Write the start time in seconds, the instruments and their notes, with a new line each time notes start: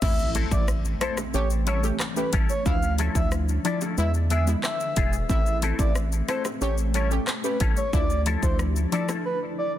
0.02 analog synth bass A1, synth stab A3 C4 E4, ambient pad A3, soft synth lead E5, kick, crash, impact, shaker
0.19 shaker
0.35 clean electric guitar A3 C4 E4 A4, closed hi-hat, high bongo, shaker
0.51 analog synth bass A1, synth stab A3 C4 E4, soft synth lead D5, kick, shaker
0.68 cross-stick, shaker
0.85 shaker
1.01 clean electric guitar A3 C4 E4 A4, soft synth lead C5, cross-stick, closed hi-hat, shaker
1.17 muted clean electric guitar stroke, cross-stick, high bongo, shaker
1.34 analog synth bass A1, synth stab A3 C#4 G4, soft synth lead C#5, shaker
1.50 shaker
1.67 clean electric guitar G3 C#4 E4 A4, soft synth lead C#5, closed hi-hat, shaker
1.83 synth stab A3 C#4 G4, high bongo, shaker
2.00 cross-stick, clap, shaker
2.16 synth stab A3 C#4 G4, soft synth lead B4, shaker
2.33 analog synth bass A1, clean electric guitar G3 C#4 E4 A4, kick, closed hi-hat, low bongo, shaker
2.49 soft synth lead C#5, shaker
2.65 analog synth bass D2, synth stab F3 D4 E4, soft synth lead F5, kick, shaker
2.83 shaker
2.98 clean electric guitar F3 A3 E4 A4, closed hi-hat, high bongo, shaker
3.15 analog synth bass D2, synth stab F3 D4 E4, soft synth lead E5, kick, shaker
3.32 cross-stick, shaker
3.48 shaker
3.64 clean electric guitar F3 A3 E4 A4, synth stab F3 D4 E4, soft synth lead D5, closed hi-hat, shaker
3.81 clean electric guitar F3 A3 E4 A4, high bongo, shaker
3.97 analog synth bass E2, synth stab G#3 B3 E4, soft synth lead E5, shaker
4.14 shaker
4.30 clean electric guitar G#3 B3 E4 G#4, soft synth lead E5, closed hi-hat, shaker
4.47 synth stab G#3 B3 E4, high bongo, shaker
4.64 soft synth lead E5, cross-stick, clap, shaker
4.80 shaker
4.96 analog synth bass E1, clean electric guitar G#3 B3 E4 G#4, kick, closed hi-hat, low bongo, shaker
5.13 shaker
5.29 analog synth bass A1, synth stab A3 C4 E4, ambient pad A3, soft synth lead E5, kick, shaker
5.46 shaker
5.62 clean electric guitar A3 C4 E4 A4, closed hi-hat, high bongo, shaker
5.79 analog synth bass A1, synth stab A3 C4 E4, soft synth lead D5, kick, shaker
5.95 cross-stick, shaker
6.12 shaker
6.28 clean electric guitar A3 C4 E4 A4, soft synth lead C5, cross-stick, closed hi-hat, shaker
6.45 muted clean electric guitar stroke, cross-stick, high bongo, shaker
6.61 analog synth bass A1, synth stab A3 C#4 G4, soft synth lead C#5, shaker
6.78 shaker
6.94 clean electric guitar G3 C#4 E4 A4, soft synth lead C#5, closed hi-hat, shaker
7.11 synth stab A3 C#4 G4, high bongo, shaker
7.27 cross-stick, clap, shaker
7.44 synth stab A3 C#4 G4, soft synth lead B4, shaker
7.60 analog synth bass A1, clean electric guitar G3 C#4 E4 A4, kick, closed hi-hat, low bongo, shaker
7.77 soft synth lead C#5, shaker
7.93 analog synth bass D2, synth stab F3 D4 E4, ambient pad E4, soft synth lead D5, kick, shaker
8.10 shaker
8.26 clean electric guitar F3 A3 E4 A4, closed hi-hat, high bongo, shaker
8.43 analog synth bass D2, synth stab F3 D4 E4, soft synth lead C5, kick, shaker
8.59 cross-stick, shaker
8.76 shaker
8.92 clean electric guitar F3 A3 E4 A4, synth stab F3 D4 E4, soft synth lead D5, closed hi-hat, shaker
9.08 clean electric guitar F3 A3 E4 A4, cross-stick, high bongo, shaker
9.25 soft synth lead B4
9.58 soft synth lead D5